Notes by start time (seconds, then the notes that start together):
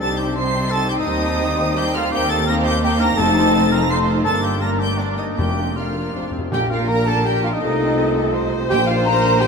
Already playing: G3
0.00 C2 C3 G3 D#4 G4 A4 C5 A5 A6
0.18 G4 G5 G6
0.36 G3 D#4 G4 C5 C6 C7
0.71 A4 A5 A6
0.89 G4 G5 G6
0.99 D#4 D#5 D#6
1.06 D#2 G3 C4 D#4 G4 C5
1.76 G3 D#4 G4 C5 G5 G6
1.95 A3 F4 F5 F6
2.12 D#2 A#3 C4 D#4 G4 C5 G5 G6
2.29 A4 A5 A6
2.47 A#3 C4 D#4 G4 A#4 C5 A#5 A#6
2.65 G4 G5 G6
2.82 A#3 C4 D#4 G4 C5 G5 G6
2.99 D4 A#4 A#5 A#6
3.16 F1 F2 A3 C4 D#4 F4 A4 C5 A5 A6
3.72 A#4 A#5 A#6
3.89 A3 C4 D#4 F4 C5 C6 C7
4.24 G1 G2 A#3 D4 A4 A#4 A5 A6
4.42 G4 G5 G6
4.60 A#3 D4 A#4 A#5 A#6
4.79 G4 G5 G6
4.97 A#3 D4 A#4 D5 D6
5.02 D4
5.17 D#4 D#5 D#6
5.36 F1 F2 A#3 D4 F4 G4 A#4 G5 G6
5.76 A3 A#3 D4 F4 A#4 F5 F6
5.96 A#3
6.14 F1 F2 A3 C4 D4 F4 C5
6.22 F2
6.31 F2 C4
6.38 F2
6.52 A#1 A#2 A#3 D4 G4 A#4 G5
6.70 F4 F5
6.88 A#4 A#5
7.07 A4 A5
7.24 G4 G5
7.44 F4 F5
7.53 D#4 D#5
7.62 C2 C3 A3 F4 A4
8.34 C5
8.69 A#1 A#2 A#3 D4 G4 G5
8.87 F4 F5
9.05 A#4 A#5
9.40 G4 G5